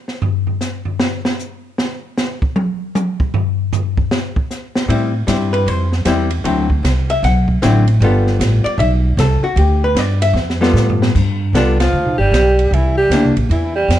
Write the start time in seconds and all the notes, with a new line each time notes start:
0.08 snare
0.22 floor tom
0.47 floor tom
0.61 snare, hi-hat pedal
0.85 floor tom
1.00 snare
1.25 snare
1.39 hi-hat pedal
1.78 snare
2.18 snare, hi-hat pedal
2.42 kick
2.56 high tom
2.95 hi-hat pedal, high tom
3.20 kick
3.34 floor tom
3.73 floor tom, hi-hat pedal
3.97 kick
4.11 snare
4.36 kick
4.51 snare, hi-hat pedal
4.75 snare
4.88 A2 G3 C4 E4, ride
5.27 G2 G3 C4 E4, snare, hi-hat pedal, ride
5.53 B4, ride
5.66 F2 C5, ride
5.92 snare
6.05 E2 G3 C4 E4, snare, hi-hat pedal, ride
6.30 ride
6.44 D2 D3 F#3 C4 E4, ride
6.70 kick
6.83 C2, snare, hi-hat pedal, ride
7.10 E5, ride
7.23 B1 F#5, snare, ride
7.48 kick
7.62 A1 D3 F#3 C4 E4, snare, hi-hat pedal, ride
7.88 ride
8.00 G1 G3 B3 F4 A4, ride
8.27 snare
8.39 A1, snare, hi-hat pedal, ride
8.64 D5, muted upright bass stroke, ride
8.78 B1 E5, ride
9.17 C2 A4, snare, hi-hat pedal, ride
9.42 F#4, muted upright bass stroke
9.56 D2 G4, ride
9.84 B4
9.95 G2 D5, snare, hi-hat pedal, ride
10.22 E5, ride
10.33 F2, snare
10.50 snare
10.61 G3 B3 F4 A4, snare
10.73 A2, snare, hi-hat pedal
10.90 floor tom
11.02 snare
11.15 G2, kick, crash
11.53 C2 D3 G3 B3 D4 F4 A4, snare, hi-hat pedal, ride
11.80 F3 F4, snare, ride
11.93 D2
12.05 B1
12.18 G1 G3 G4
12.32 B1, snare, hi-hat pedal, ride
12.59 ride
12.71 C2 E3 E4, ride
12.97 G3 G4
13.10 D2 A#3 D4 E4, snare, hi-hat pedal, ride
13.24 C2
13.37 A#1, ride
13.49 E2 E3 E4, ride
13.75 G3 G4
13.88 F2, snare, hi-hat pedal, ride